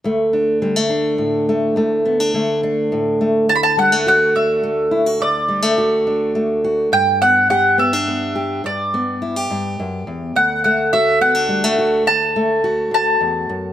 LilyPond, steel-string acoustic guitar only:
\new Staff \with { instrumentName = "Steel-string acoustic guitar" } { \time 6/8 \key d \major \tempo 4. = 70 << { a8 d'8 g16 a16 d'4 a8 | a8 b16 d'16 a8 d'4 a8 | r8 g16 a16 fis'8 d'8 a8 e'16 fis'16 | r8 g16 a16 fis'8 d'8 a8 fis'8 |
r8 b8 g'8 b16 d'16 b8 g'8 | r8 b8 e'16 g'4.~ g'16 | r8 a8 fis'8 b16 d'16 g16 a16 fis'8 | r8 a8 fis'2 | } \\ { d,4 d4 a,4 | d,4 d4 a,4 | d,2. | d,2. |
g,2. | g,4. g,8 fis,8 e,8 | d,2. | d,4. d,8 e,8 fis,8 | } >> }